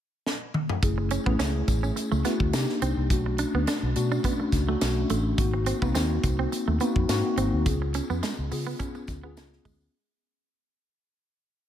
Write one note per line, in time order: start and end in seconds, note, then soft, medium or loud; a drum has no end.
0.26 snare medium
0.54 mid tom medium
0.69 floor tom medium
0.82 1.16 F#1 medium
0.82 1.13 A3 medium
0.82 1.14 C#4 medium
0.82 1.14 E4 medium
0.82 1.14 G#4 medium
0.82 kick loud
0.82 closed hi-hat medium
0.82 tambourine soft
0.98 muted clean electric guitar stroke soft
1.10 1.20 C#4 medium
1.10 closed hi-hat medium
1.10 tambourine soft
1.26 1.36 A1 medium
1.26 1.97 A3 medium
1.26 1.34 B3 medium
1.26 1.97 C#4 medium
1.26 1.97 E4 medium
1.26 1.97 G#4 medium
1.26 kick medium
1.39 1.61 C#2 medium
1.39 1.48 C#4 medium
1.39 snare loud
1.39 closed hi-hat medium
1.39 tambourine medium
1.68 1.89 A1 medium
1.68 muted clean electric guitar stroke soft
1.68 kick medium
1.68 closed hi-hat medium
1.68 tambourine soft
1.83 1.91 C#4 medium
1.83 tambourine soft
1.96 muted clean electric guitar stroke soft
1.96 closed hi-hat medium
1.96 tambourine soft
2.12 2.22 C#2 medium
2.12 2.19 A3 medium
2.12 tambourine soft
2.24 2.53 A3 medium
2.24 2.33 B3 medium
2.24 2.53 C#4 medium
2.24 2.54 E4 medium
2.24 2.54 F#4 medium
2.24 snare soft
2.24 closed hi-hat medium
2.24 tambourine soft
2.40 2.50 D2 medium
2.40 kick medium
2.53 2.65 C3 medium
2.53 3.00 A#3 medium
2.53 3.00 D4 medium
2.53 3.00 D#4 medium
2.53 3.00 G4 medium
2.53 snare loud
2.53 closed hi-hat medium
2.53 tambourine medium
2.69 snare soft
2.82 2.93 C2 medium
2.82 2.91 C4 medium
2.82 closed hi-hat medium
2.82 tambourine soft
2.97 3.10 C2 medium
3.10 3.43 B1 medium
3.10 3.72 A3 medium
3.10 3.72 C#4 medium
3.10 3.72 D4 medium
3.10 3.72 F#4 medium
3.10 kick medium
3.10 closed hi-hat loud
3.10 tambourine soft
3.26 muted clean electric guitar stroke soft
3.38 3.47 D4 medium
3.38 closed hi-hat medium
3.38 tambourine soft
3.54 3.64 D2 loud
3.54 3.62 B3 medium
3.67 3.76 D4 medium
3.67 snare loud
3.67 closed hi-hat medium
3.67 tambourine medium
3.83 3.92 B1 medium
3.95 4.17 B2 medium
3.95 4.47 A3 medium
3.95 4.47 C#4 medium
3.95 4.48 D4 medium
3.95 4.48 F#4 medium
3.95 muted clean electric guitar stroke soft
3.95 closed hi-hat medium
3.95 tambourine medium
4.12 4.19 D4 medium
4.12 tambourine soft
4.24 4.33 B3 medium
4.24 kick medium
4.24 closed hi-hat medium
4.24 tambourine medium
4.40 muted clean electric guitar stroke soft
4.52 4.74 C#2 medium
4.52 kick medium
4.52 snare soft
4.52 closed hi-hat medium
4.52 tambourine soft
4.67 5.19 A3 medium
4.67 4.76 A3 medium
4.67 5.19 C#4 medium
4.67 5.19 D4 medium
4.67 5.19 F#4 medium
4.81 5.03 B1 medium
4.81 snare loud
4.81 closed hi-hat medium
4.81 tambourine medium
5.09 5.31 A1 medium
5.09 5.19 A3 medium
5.09 closed hi-hat medium
5.09 tambourine soft
5.38 5.71 G#1 loud
5.38 5.69 A#3 medium
5.38 5.69 C4 medium
5.38 5.69 D#4 medium
5.38 5.69 F#4 medium
5.38 kick loud
5.38 closed hi-hat loud
5.38 tambourine soft
5.54 muted clean electric guitar stroke soft
5.66 5.75 C4 medium
5.66 closed hi-hat medium
5.66 tambourine soft
5.81 5.96 C2 medium
5.81 6.52 A#3 medium
5.81 5.89 B3 medium
5.81 6.52 C4 medium
5.81 6.53 D#4 medium
5.81 6.53 F#4 medium
5.81 kick medium
5.81 tambourine soft
5.95 6.17 D#2 medium
5.95 6.03 C4 medium
5.95 snare loud
5.95 closed hi-hat medium
5.95 tambourine medium
6.23 6.45 C2 medium
6.23 muted clean electric guitar stroke soft
6.23 kick medium
6.23 closed hi-hat medium
6.23 tambourine soft
6.39 6.46 C4 medium
6.52 muted clean electric guitar stroke soft
6.52 closed hi-hat medium
6.52 tambourine soft
6.67 6.77 D#2 medium
6.67 6.75 A3 medium
6.80 7.07 A#3 medium
6.80 6.89 B3 medium
6.80 7.08 C4 medium
6.80 7.08 D#4 medium
6.80 7.08 F#4 medium
6.80 closed hi-hat medium
6.80 tambourine soft
6.96 7.06 F2 medium
6.96 kick medium
7.09 7.20 G#2 medium
7.09 7.55 A#3 medium
7.09 7.55 C4 medium
7.09 7.56 D#4 medium
7.09 7.56 F#4 loud
7.09 snare loud
7.09 closed hi-hat loud
7.09 tambourine medium
7.37 7.49 G#1 medium
7.37 7.46 C4 medium
7.37 closed hi-hat medium
7.37 tambourine soft
7.53 7.63 D2 medium
7.66 7.99 C#2 loud
7.66 8.28 B3 medium
7.66 8.28 C#4 medium
7.66 8.28 F4 medium
7.66 8.28 G#4 medium
7.66 kick loud
7.66 closed hi-hat loud
7.66 tambourine soft
7.82 muted clean electric guitar stroke soft
7.94 8.03 C#4 medium
7.94 closed hi-hat medium
7.94 tambourine soft
8.10 8.20 F2 medium
8.10 8.17 B3 medium
8.10 tambourine soft
8.23 8.31 G#3 medium
8.23 snare loud
8.23 closed hi-hat medium
8.23 tambourine medium
8.38 8.48 C#2 medium
8.51 8.73 C#3 loud
8.51 9.03 B3 medium
8.51 9.03 C#4 medium
8.51 9.03 F4 medium
8.51 9.04 G#4 medium
8.51 muted clean electric guitar stroke soft
8.51 open hi-hat medium
8.51 tambourine medium
8.67 8.74 B3 medium
8.67 tambourine soft
8.79 8.88 C#4 medium
8.79 kick medium
8.79 closed hi-hat medium
8.79 tambourine soft
8.95 muted clean electric guitar stroke soft
8.95 tambourine soft
9.07 9.37 D2 medium
9.07 kick medium
9.07 snare soft
9.07 closed hi-hat medium
9.07 tambourine soft
9.23 9.31 B3 medium
9.23 9.74 B3 medium
9.23 9.75 C#4 medium
9.23 9.75 F4 medium
9.23 9.75 G#4 medium
9.37 9.58 C#2 medium
9.37 snare loud
9.37 closed hi-hat medium
9.37 tambourine medium
9.53 snare soft
9.65 9.87 D2 medium
9.65 9.74 G#3 medium
9.65 kick medium
9.65 open hi-hat medium
9.65 tambourine soft
9.81 tambourine soft